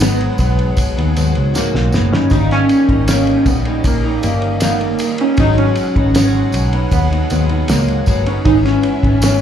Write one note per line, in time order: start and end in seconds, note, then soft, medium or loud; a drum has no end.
0.00 0.28 G#1 loud
0.00 0.97 G#2 medium
0.00 2.28 B2 medium
0.00 0.97 F#3 medium
0.00 0.38 B3 loud
0.00 0.97 B3 medium
0.00 0.96 D#4 loud
0.00 2.28 G#4 medium
0.00 2.27 F#5 medium
0.00 snare loud
0.00 ride medium
0.00 tambourine medium
0.21 ride soft
0.38 0.70 B1 medium
0.38 1.50 B3 medium
0.38 kick medium
0.38 ride medium
0.38 tambourine soft
0.59 ride soft
0.77 kick loud
0.77 ride medium
0.77 tambourine soft
0.97 1.13 D#2 medium
0.97 1.15 F#3 soft
0.97 1.15 B3 soft
0.97 1.16 D#4 medium
0.97 ride soft
1.15 1.32 D#2 medium
1.15 1.53 G#2 medium
1.15 1.54 F#3 medium
1.15 1.55 B3 medium
1.15 1.55 D#4 medium
1.15 ride medium
1.15 tambourine medium
1.35 1.52 C#2 medium
1.35 ride soft
1.54 1.91 G#2 medium
1.54 1.93 F#3 medium
1.54 2.14 A#3 medium
1.54 1.94 D#4 medium
1.54 snare medium
1.54 tambourine medium
1.75 1.90 B1 medium
1.75 snare medium
1.92 2.09 F#1 medium
1.92 2.12 G#2 medium
1.92 2.13 F#3 medium
1.92 2.12 B3 medium
1.92 2.11 D#4 medium
1.92 snare medium
1.92 tambourine soft
2.12 2.28 G1 medium
2.12 2.32 F#3 soft
2.12 2.32 B3 soft
2.12 2.32 C#4 medium
2.12 2.31 D#4 medium
2.12 snare medium
2.30 2.62 G#1 loud
2.30 2.89 D#3 medium
2.30 2.90 G3 medium
2.30 2.90 A#3 medium
2.30 5.36 C#4 medium
2.30 2.51 D#4 loud
2.30 2.88 D#4 medium
2.30 5.36 G4 medium
2.30 5.35 D#5 medium
2.30 kick loud
2.30 hi-hat pedal medium
2.30 ride medium
2.30 tambourine soft
2.51 3.05 C#4 loud
2.51 snare soft
2.51 ride soft
2.69 ride medium
2.69 tambourine soft
2.89 3.35 G#1 loud
2.89 3.08 G3 soft
2.89 3.09 A#3 soft
2.89 3.09 D#4 medium
2.89 kick medium
2.89 ride soft
3.08 3.66 D#3 medium
3.08 3.66 G3 medium
3.08 3.65 A#3 medium
3.08 3.48 C#4 loud
3.08 3.64 D#4 medium
3.08 snare loud
3.08 ride medium
3.08 tambourine medium
3.27 ride soft
3.46 3.77 A#1 medium
3.46 3.83 B3 medium
3.46 kick loud
3.46 ride medium
3.46 tambourine soft
3.65 4.05 G3 soft
3.65 4.05 A#3 soft
3.65 4.03 D#4 soft
3.65 ride soft
3.84 4.15 A#1 loud
3.84 4.23 A#3 medium
3.84 kick loud
3.84 ride medium
3.84 tambourine medium
4.04 4.22 G3 soft
4.04 4.22 A#3 soft
4.04 4.23 D#4 medium
4.22 4.85 G1 medium
4.22 4.59 D#3 medium
4.22 4.60 G3 medium
4.22 4.61 A#3 medium
4.22 4.62 A#3 medium
4.22 4.61 D#4 medium
4.22 ride medium
4.22 tambourine medium
4.42 ride soft
4.60 4.99 D#3 medium
4.60 5.00 G3 medium
4.60 5.00 A#3 medium
4.60 4.70 A#3 medium
4.60 5.00 D#4 medium
4.60 snare loud
4.60 ride medium
4.60 tambourine medium
4.69 4.76 B3 medium
4.78 5.22 A#3 medium
4.78 ride soft
4.99 5.20 D#3 medium
4.99 5.20 G3 medium
4.99 5.20 A#3 medium
4.99 5.18 D#4 medium
4.99 ride medium
4.99 tambourine soft
5.18 5.39 A#3 soft
5.18 5.40 C#4 medium
5.18 5.38 D#4 medium
5.18 ride soft
5.22 5.38 G3 soft
5.37 5.69 G#1 loud
5.37 5.96 G#2 medium
5.37 8.43 B2 medium
5.37 5.96 F#3 medium
5.37 5.96 B3 medium
5.37 5.59 D#4 loud
5.37 5.95 D#4 medium
5.37 8.43 G#4 medium
5.37 8.43 F#5 medium
5.37 kick loud
5.37 ride medium
5.37 tambourine soft
5.58 6.15 C#4 loud
5.58 ride soft
5.75 ride medium
5.75 tambourine soft
5.96 6.42 G#1 loud
5.96 6.14 F#3 soft
5.96 6.15 B3 soft
5.96 6.15 D#4 medium
5.96 kick medium
5.96 ride soft
6.14 6.73 G#2 medium
6.14 6.73 F#3 medium
6.14 6.73 B3 medium
6.14 6.95 C#4 loud
6.14 6.72 D#4 medium
6.14 snare loud
6.14 ride medium
6.14 tambourine medium
6.52 6.85 B1 medium
6.52 ride medium
6.52 tambourine soft
6.73 7.13 F#3 soft
6.73 7.12 B3 soft
6.73 7.10 D#4 medium
6.73 ride soft
6.91 7.23 D#2 medium
6.91 7.06 B3 loud
6.91 kick loud
6.91 ride medium
6.91 tambourine soft
7.11 7.30 F#3 soft
7.11 7.31 B3 medium
7.11 7.31 D#4 medium
7.11 ride soft
7.30 7.62 D#2 loud
7.30 7.50 G#2 medium
7.30 7.50 F#3 medium
7.30 7.71 B3 medium
7.30 7.49 B3 medium
7.30 7.48 D#4 medium
7.30 ride medium
7.30 tambourine medium
7.49 7.67 F#3 soft
7.49 7.69 B3 medium
7.49 7.68 D#4 medium
7.49 ride soft
7.68 8.00 C#2 loud
7.68 8.05 G#2 medium
7.68 8.07 F#3 medium
7.68 8.23 A#3 medium
7.68 8.08 D#4 medium
7.68 snare loud
7.68 ride medium
7.68 tambourine medium
7.88 ride soft
8.06 8.38 G1 loud
8.06 8.26 G#2 medium
8.06 8.27 F#3 medium
8.06 8.27 B3 medium
8.06 8.26 D#4 medium
8.06 kick medium
8.06 ride medium
8.06 tambourine soft
8.26 8.46 F#3 soft
8.26 8.46 B3 medium
8.26 8.46 C#4 medium
8.26 8.46 D#4 medium
8.26 ride soft
8.45 8.76 G#1 loud
8.45 9.03 G#2 medium
8.45 9.04 E3 medium
8.45 9.04 B3 medium
8.45 9.41 C#4 medium
8.45 9.02 C#4 medium
8.45 8.54 D#4 loud
8.45 9.41 B4 medium
8.45 9.41 E5 medium
8.45 kick loud
8.45 ride medium
8.65 9.19 C#4 loud
8.65 snare soft
8.65 ride soft
8.83 ride medium
9.03 9.41 G#1 medium
9.03 9.22 E3 soft
9.03 9.22 B3 medium
9.03 9.23 C#4 medium
9.03 kick medium
9.03 ride soft
9.22 9.41 G#2 medium
9.22 9.41 E3 medium
9.22 9.41 B3 medium
9.22 9.41 C#4 medium
9.22 snare loud
9.22 ride medium
9.22 tambourine medium